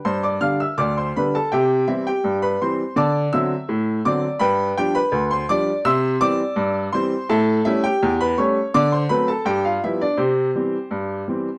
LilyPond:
<<
  \new Staff \with { instrumentName = "Upright piano" } { \time 2/4 \key c \major \tempo 4 = 83 <c'' c'''>16 <d'' d'''>16 <f'' f'''>16 <e'' e'''>16 <d'' d'''>16 <c'' c'''>16 <b' b''>16 <a' a''>16 | <g' e'' g''>8 <e' e''>16 <g' g''>8 <b' b''>16 <c'' c'''>8 | <d'' a'' d'''>8 <e'' e'''>4 <d'' d'''>8 | <b' g'' b''>8 <g' g''>16 <b' b''>8 <c'' c'''>16 <d'' d'''>8 |
<e'' c''' e'''>8 <d'' d'''>4 <c'' c'''>8 | <a' e'' a''>8 <e' e''>16 <g' g''>8 <b' b''>16 <cis'' cis'''>8 | <d'' d'''>16 <c'' c'''>16 <b' b''>16 <a' a''>16 <g' g''>16 <f' f''>16 <e' e''>16 <d' d''>16 | <c' g' c''>2 | }
  \new Staff \with { instrumentName = "Upright piano" } { \clef bass \time 2/4 \key c \major g,8 <d g d'>8 d,8 <d g d'>8 | c8 <e g c'>8 g,8 <e g c'>8 | d8 <d fis c'>8 a,8 <d fis c'>8 | g,8 <f g d'>8 d,8 <f g d'>8 |
c8 <e g c'>8 g,8 <e g c'>8 | a,8 <g a cis'>8 e,8 <g a cis'>8 | d8 <fis a c'>8 g,8 <f g b>8 | c8 <e g c'>8 g,8 <e g c'>8 | }
>>